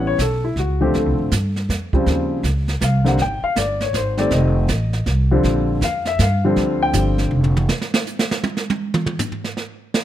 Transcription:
Already playing: upright bass A1, upright piano E3 G3 B3 C#4
0.07 upright piano C#5
0.18 upright bass B1, upright piano A4, kick, snare, hi-hat pedal
0.44 upright piano E4
0.56 upright bass C#2, upright piano F#4, kick, snare
0.81 upright piano D3 F3 A3 C4 G4
0.94 upright bass D2, upright piano A4, brush sweep, kick, snare
1.06 upright bass C2
1.18 upright bass A1
1.31 upright bass G2, kick, snare, hi-hat pedal
1.56 snare
1.69 upright bass F2, kick, snare, hi-hat pedal
1.93 upright piano C#3 F3 G3 C4, kick
2.06 upright bass D#2, brush sweep, kick, snare
2.43 upright bass C#2, kick, snare, hi-hat pedal
2.68 snare
2.81 upright bass C2, upright piano F5, kick, snare, hi-hat pedal
3.04 upright piano D3 G3 A#3 C4 F#5, snare
3.18 upright bass G#1, brush sweep, kick, snare
3.22 upright piano G5
3.42 upright piano F5, muted upright bass stroke
3.56 upright bass G1, upright piano D5, kick, snare, hi-hat pedal
3.81 upright piano C#5, snare
3.93 upright bass G#1, upright piano C5, kick, snare, hi-hat pedal
4.17 upright piano D#3 G3 A3 C4 D5, snare
4.31 upright bass F1, upright piano D#5, brush sweep, kick, snare
4.68 upright bass A1, kick, snare, hi-hat pedal
4.93 snare
5.06 upright bass C2, kick, snare
5.31 upright piano D3 F3 G3 C4
5.43 upright bass A#1, brush sweep, kick, snare
5.81 upright bass F2, upright piano F5, kick, snare, hi-hat pedal
6.05 upright piano E5, snare
6.19 upright bass G2, upright piano F5, kick, snare, hi-hat pedal
6.45 upright piano D3 F3 G3 C4
6.56 upright bass D2, brush sweep, kick, snare
6.83 upright piano G5
6.93 upright bass G1, upright piano D3 F3 G3 C4, kick, snare, hi-hat pedal
7.18 snare
7.31 upright bass F1
7.44 floor tom
7.57 mid tom
7.69 snare
7.82 snare
7.94 snare
8.07 hi-hat pedal
8.19 snare
8.31 snare
8.44 high tom
8.57 snare
8.70 high tom
8.94 mid tom
9.06 mid tom
9.19 floor tom, hi-hat pedal
9.32 floor tom
9.44 snare
9.57 snare
9.94 snare

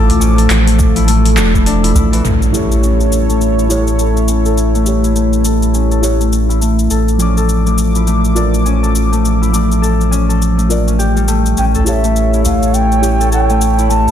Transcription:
Already playing: sub bass A1, analog synth pad F3 A4 D6, harp A3 C#4 E4 A4
0.08 open hi-hat, udu, shaker
0.20 harp C#4, shaker
0.38 harp A4, open hi-hat, shaker
0.50 sub bass A1, clap, open hi-hat, shaker
0.66 harp A3, open hi-hat, shaker
0.78 kick, udu, shaker
0.96 harp E4, open hi-hat, shaker
1.08 harp A3, open hi-hat, shaker
1.25 open hi-hat, shaker
1.37 sub bass E1, harp D4, clap, shaker
1.55 harp E4, kick, shaker
1.66 harp D4, open hi-hat, shaker
1.83 harp E4, open hi-hat, shaker
1.95 sub bass A1, harp E4, udu, shaker
2.13 harp E3, open hi-hat, shaker
2.24 sub bass A1, analog synth pad A3 E4 A4 C#5, harp A3, impact, shaker
2.42 shaker
2.52 synth keys E4 G4, harp A4, shaker
2.56 synth keys C#5
2.72 shaker
2.83 harp C#4, shaker
3.00 harp A4, shaker
3.12 shaker
3.29 harp A3, shaker
3.41 shaker
3.58 harp E4, shaker
3.69 harp A3, synth keys E4 G4 C#5, shaker
3.87 shaker
3.99 harp A4, shaker
4.17 shaker
4.28 harp C#4, shaker
4.46 harp A4, shaker
4.58 shaker
4.75 harp A3, shaker
4.84 synth keys E4 G4 C#5, shaker
5.04 harp E4, shaker
5.16 harp A3, shaker
5.33 shaker
5.45 harp A4, shaker
5.62 shaker
5.74 harp C#4, shaker
5.91 harp A4, shaker
6.02 synth keys E4 G4 C#5, shaker
6.20 harp A3, shaker
6.33 shaker
6.49 harp E4, shaker
6.61 harp A3, shaker
6.79 shaker
6.91 sub bass A1, analog synth pad F3 D6, harp A4, shaker
7.08 shaker
7.18 synth keys F3, harp C#4, shaker
7.22 synth keys D6
7.37 harp A4, shaker
7.49 shaker
7.66 harp A3, shaker
7.78 shaker
7.95 harp E4, shaker
8.07 harp A3, shaker
8.25 shaker
8.35 synth keys F4 A#4 D5, harp A4, shaker
8.54 shaker
8.66 harp C#4, shaker
8.83 harp A4, shaker
8.95 shaker
9.12 harp A3, shaker
9.25 shaker
9.42 harp E4, shaker
9.51 synth keys F3 D6, harp A3, shaker
9.72 shaker
9.82 harp A4, shaker
10.01 shaker
10.11 harp C#4, shaker
10.29 harp A4, shaker
10.42 shaker
10.57 harp A3, shaker
10.69 synth keys F4 A#4 D5, shaker
10.87 harp C#4, shaker
10.99 harp G4, shaker
11.16 harp G3, shaker
11.28 harp A3, shaker
11.46 shaker
11.57 sub bass A1, analog synth pad A3 E4 A4 C#5, harp C#4, bansuri G5, shaker
11.75 harp A4, udu, shaker
11.84 synth keys E4 G4, harp A4, bansuri F5, shaker
11.89 synth keys C#5, bansuri E5
12.04 harp A3, shaker
12.16 shaker
12.34 harp E4, shaker
12.45 harp A3, bansuri F5, udu, shaker
12.63 shaker
12.74 bansuri G5, shaker
12.92 shaker
13.02 harp C#4, synth keys E4 G4 C#5, shaker
13.20 harp A4, shaker
13.32 harp A4, bansuri G5, shaker
13.49 harp A3, shaker
13.61 shaker
13.79 harp E4, shaker
13.90 harp A3, analog synth pad G4, bansuri A5, shaker
14.08 udu, shaker

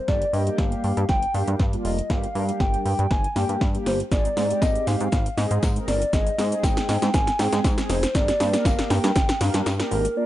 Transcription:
Already playing: soft synth lead C5
0.08 analog synth bass G1, analog polysynth G3 A#3 D4 G4, soft synth lead D5, kick, snare
0.22 closed hi-hat
0.33 analog synth bass G2, analog polysynth G3 A#3 D4 G4, soft synth lead D#5, open hi-hat
0.47 analog polysynth G3 A#3 D4 G4, closed hi-hat
0.58 analog synth bass G1, soft synth lead F5, kick, snare
0.72 closed hi-hat
0.84 analog synth bass G2, open hi-hat
0.97 analog synth bass G2, closed hi-hat
1.09 analog synth bass G1, soft synth lead G5, kick, snare
1.22 closed hi-hat
1.34 analog synth bass G2, analog polysynth G3 A#3 D4 G4, soft synth lead F5, open hi-hat
1.48 analog synth bass G2, closed hi-hat
1.59 analog synth bass G2, kick, snare
1.73 analog polysynth G3 A#3 D4 F4, closed hi-hat
1.85 analog synth bass F1, soft synth lead D#5, open hi-hat
1.99 closed hi-hat
2.10 analog synth bass G1, analog polysynth G3 A#3 D4 G4, soft synth lead F5, kick, snare
2.24 closed hi-hat
2.35 analog synth bass G2, analog polysynth G3 A#3 D4 A#4, open hi-hat
2.48 analog polysynth G3 A#3 D4 G4, closed hi-hat
2.60 analog synth bass G1, soft synth lead G5, kick, snare
2.74 closed hi-hat
2.86 analog synth bass G2, soft synth lead G5, open hi-hat
2.99 analog synth bass G2, closed hi-hat
3.11 analog synth bass G1, soft synth lead G#5, kick, snare
3.24 closed hi-hat
3.36 analog synth bass G2, analog polysynth G3 A#3 D4 G4, soft synth lead G5, snare, open hi-hat
3.49 analog synth bass G2, closed hi-hat
3.61 analog synth bass G2, kick, snare
3.74 analog polysynth G3 A#3 D4 G4, closed hi-hat
3.86 analog synth bass G1, soft synth lead C5, snare, open hi-hat
4.00 closed hi-hat
4.11 analog synth bass G#1, analog polysynth G#3 C4 D#4 G#4, soft synth lead D5, kick, snare, shaker
4.25 closed hi-hat, shaker
4.37 analog synth bass G#2, analog polysynth G#3 C4 D#4 G#4, snare, open hi-hat, shaker
4.50 analog polysynth G#3 C4 D#4 G4, closed hi-hat, shaker
4.62 analog synth bass G#1, soft synth lead D#5, kick, snare, tambourine, shaker
4.75 closed hi-hat, shaker
4.87 analog synth bass G#2, soft synth lead F5, snare, open hi-hat, shaker
5.00 analog synth bass G#2, closed hi-hat, shaker
5.12 analog synth bass G#1, kick, snare, shaker
5.26 closed hi-hat, shaker
5.37 analog synth bass G#2, analog polysynth G#3 C4 D#4 G#4, soft synth lead D#5, snare, open hi-hat, shaker
5.51 analog synth bass G#2, closed hi-hat, shaker
5.63 analog synth bass G#2, kick, snare, tambourine, shaker
5.76 analog polysynth G#3 C4 D#4 A#4, closed hi-hat, shaker
5.88 analog synth bass G1, soft synth lead D5, snare, open hi-hat, shaker
6.02 closed hi-hat, shaker
6.13 analog synth bass G#1, analog polysynth G#3 C4 D#4 G#4, soft synth lead D#5, kick, snare, shaker
6.27 closed hi-hat, shaker
6.38 analog synth bass G#2, analog polysynth G#3 C4 D#4 G#4, snare, open hi-hat, shaker
6.51 analog polysynth G#3 C4 D#4 G#4, closed hi-hat, shaker
6.63 analog synth bass G#1, soft synth lead G5, kick, snare, tambourine, shaker
6.77 snare, closed hi-hat, shaker
6.89 analog synth bass G#2, snare, open hi-hat, shaker
7.02 analog synth bass G#2, snare, closed hi-hat, shaker
7.14 analog synth bass G#1, soft synth lead G#5, kick, snare, shaker
7.27 snare, closed hi-hat, shaker
7.39 analog synth bass G#2, analog polysynth G#3 C4 D#4 G#4, soft synth lead G5, snare, open hi-hat, shaker
7.52 analog synth bass G#2, snare, closed hi-hat, shaker
7.64 analog synth bass G#2, kick, snare, tambourine, shaker
7.77 analog polysynth G#3 C4 D#4 G#4, snare, closed hi-hat, shaker
7.90 analog synth bass F1, soft synth lead C5, snare, open hi-hat, shaker
8.03 snare, closed hi-hat, shaker
8.14 analog synth bass G1, analog polysynth A#3 D4 G4 A#4, soft synth lead D5, kick, snare, shaker
8.28 snare, closed hi-hat, shaker
8.40 analog synth bass G2, analog polysynth A#3 D4 G4 C5, snare, open hi-hat, shaker
8.53 analog polysynth A#3 D4 G4 A#4, snare, closed hi-hat, shaker
8.65 analog synth bass G1, soft synth lead F5, kick, snare, tambourine, shaker
8.79 snare, closed hi-hat, shaker
8.90 analog synth bass G2, soft synth lead G5, snare, open hi-hat, shaker
9.04 analog synth bass G2, snare, closed hi-hat, shaker
9.16 analog synth bass G1, kick, snare, shaker
9.29 snare, closed hi-hat, shaker
9.41 analog synth bass G2, analog polysynth A#3 D4 G4 A#4, soft synth lead F5, snare, open hi-hat, shaker
9.54 analog synth bass G2, snare, closed hi-hat, shaker
9.66 analog synth bass G2, snare, tambourine, shaker
9.79 analog polysynth A#3 D4 G4 A#4, snare, closed hi-hat, shaker
9.91 analog synth bass G#1, soft synth lead A#4, open hi-hat, shaker
10.05 closed hi-hat, shaker
10.16 analog polysynth A#3 D4 F4 A#4, soft synth lead D5

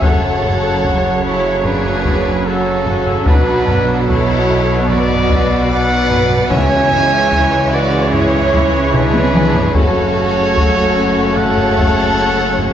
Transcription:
0.01 double bass section F#1, cello section F#2, trombone section C#3 F#3, viola section F#3 C#5, french horn section F#4 C#5, violin section A4 C#5, trumpet section F#5, taiko
0.43 taiko low
0.84 taiko
1.24 violin section E4 A4, trumpet section C#5
1.64 violin section D4 G#4, trumpet section B4, taiko low
1.85 taiko low
2.05 taiko
2.45 violin section C#4 F#4, trumpet section A4
2.86 taiko low
3.06 taiko low
3.26 double bass section B1, trombone section B2, cello section B2, french horn section B3, viola section B3, violin section D4 F#4, trumpet section B4, taiko
3.67 taiko low
4.06 violin section E4 A4, trumpet section C#5, taiko
4.88 violin section F#4 B4, trumpet section D5, taiko low
5.09 taiko low
5.29 taiko
5.68 violin section B4 D5, trumpet section F#5
6.10 taiko low
6.30 taiko low
6.50 double bass section C#2, cello section C#3, timpani C#3, viola section E3, trombone section G#3, french horn section G#3 E4, violin section C#5 E5, trumpet section G#5, taiko
6.91 taiko low
7.31 trombone section E3, viola section C#5, taiko
7.71 violin section F#4 B4, trumpet section D5
8.12 violin section E4 G#4, trumpet section C#5, taiko low
8.34 taiko low
8.54 taiko
8.93 violin section D4 G#4, trumpet section B4, taiko low-mid
9.14 taiko high
9.35 taiko mid
9.55 taiko low
9.74 double bass section F#1, cello section F#2, trombone section C#3 A3, viola section A3 C#4, french horn section C#4 F#4, violin section F#4 A4, trumpet section C#5, taiko
10.16 taiko low
10.57 taiko
11.36 violin section A4 C#5, trumpet section F#5, taiko low
11.57 taiko low
11.78 taiko
12.58 taiko low

